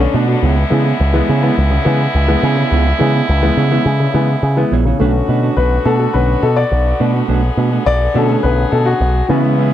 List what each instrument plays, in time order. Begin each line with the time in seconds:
Already playing: french horn section D3 A3 B3 D4
0.00 grand piano D3 A3 C#4, muted clean electric guitar stroke
0.14 picked electric bass B2, clean electric guitar A3 D4 F#4 C#5
0.28 grand piano B2, clean electric guitar A3 D4 F#4 C#5
0.42 picked electric bass C#2, grand piano C#3, french horn section G#3 E4, clean electric guitar B3 E4 G#4 C#5
0.57 grand piano G#3 B3, muted clean electric guitar stroke
0.70 picked electric bass C#3, grand piano E3 G#3 B3, clean electric guitar B3 E4 G#4 C#5
0.85 clean electric guitar B3 E4 G#4 C#5
1.00 picked electric bass C#2
1.13 grand piano E3 G#3 B3, muted clean electric guitar stroke
1.28 grand piano C#3, picked electric bass C#3, clean electric guitar B3 E4 G#4 C#5
1.42 grand piano E3 G#3 B3, clean electric guitar B3 E4 G#4 C#5
1.57 picked electric bass C#2, grand piano G#3 B3
1.71 grand piano C#3, muted clean electric guitar stroke
1.85 picked electric bass C#3, grand piano E3 G#3 B3
2.00 muted clean electric guitar stroke
2.15 picked electric bass C#2, muted clean electric guitar stroke
2.28 grand piano E3 G#3 B3, muted clean electric guitar stroke
2.43 picked electric bass C#3, clean electric guitar B3 E4 G#4 C#5
2.57 grand piano C#3, clean electric guitar B3 E4 G#4 C#5
2.71 picked electric bass C#2, grand piano C#3, clean electric guitar B3 E4 G#4 C#5
2.86 grand piano G#3 B3, muted clean electric guitar stroke
2.99 picked electric bass C#3, grand piano E3 G#3 B3, clean electric guitar B3 E4 G#4 C#5
3.14 clean electric guitar B3 E4 G#4 C#5
3.29 picked electric bass C#2, muted clean electric guitar stroke
3.42 grand piano E3 G#3 B3, muted clean electric guitar stroke
3.57 grand piano C#3, picked electric bass C#3, clean electric guitar B3 E4 G#4 C#5
3.71 grand piano E3 G#3 B3, clean electric guitar B3 E4 G#4 C#5
3.85 picked electric bass C#3, grand piano G#3 B3
4.00 grand piano C#3, muted clean electric guitar stroke
4.14 picked electric bass C#3, grand piano E3 G#3 B3
4.29 muted clean electric guitar stroke
4.43 picked electric bass C#3, muted clean electric guitar stroke
4.56 grand piano E3 G#3 B3, muted clean electric guitar stroke
4.72 picked electric bass A#1, clean electric guitar B3 E4 G#4 C#5
4.85 grand piano C#3, clean electric guitar B3 E4 G#4 C#5
4.99 picked electric bass B1, grand piano D3 A3 C#4, french horn section D3 A3 B3 F#4, clean electric guitar A3 D4 F#4 B4
5.14 muted clean electric guitar stroke
5.29 picked electric bass B2, clean electric guitar A3 D4 F#4 B4
5.43 clean electric guitar A3 D4 F#4 B4
5.57 picked electric bass B1, grand piano B4
5.71 muted clean electric guitar stroke
5.85 picked electric bass B2, clean electric guitar A3 D4 F#4 B4, grand piano A4
5.99 clean electric guitar A3 D4 F#4 B4, grand piano A4
6.13 picked electric bass B1, grand piano D3 A3 C#4 B4, muted clean electric guitar stroke
6.28 muted clean electric guitar stroke
6.42 picked electric bass B2, grand piano A4
6.57 grand piano D5, muted clean electric guitar stroke
6.72 picked electric bass B1, muted clean electric guitar stroke
6.85 muted clean electric guitar stroke
7.00 picked electric bass B2, clean electric guitar A3 D4 F#4 B4
7.14 clean electric guitar A3 D4 F#4 B4
7.28 picked electric bass B1, clean electric guitar A3 D4 F#4 B4, french horn section G#4
7.43 muted clean electric guitar stroke
7.57 picked electric bass B2, clean electric guitar A3 D4 F#4 B4
7.72 clean electric guitar A3 D4 F#4 B4
7.86 picked electric bass B1, grand piano D5, muted clean electric guitar stroke
8.01 muted clean electric guitar stroke
8.14 picked electric bass B2, grand piano D3 A3 C#4 A4, clean electric guitar A3 D4 F#4 B4
8.29 clean electric guitar A3 D4 F#4 B4, grand piano A4
8.43 picked electric bass B1, grand piano B4, muted clean electric guitar stroke
8.58 muted clean electric guitar stroke
8.72 picked electric bass B2, grand piano A4
8.86 grand piano F#4, muted clean electric guitar stroke
9.01 picked electric bass B1, muted clean electric guitar stroke
9.15 muted clean electric guitar stroke
9.28 french horn section C#3 G#3 B3 E4, picked electric bass C#3, grand piano E3 G#3 B3, clean electric guitar G#3 C#4 E4 B4
9.44 clean electric guitar G#3 C#4 E4 B4
9.58 clean electric guitar G#3 C#4 E4 B4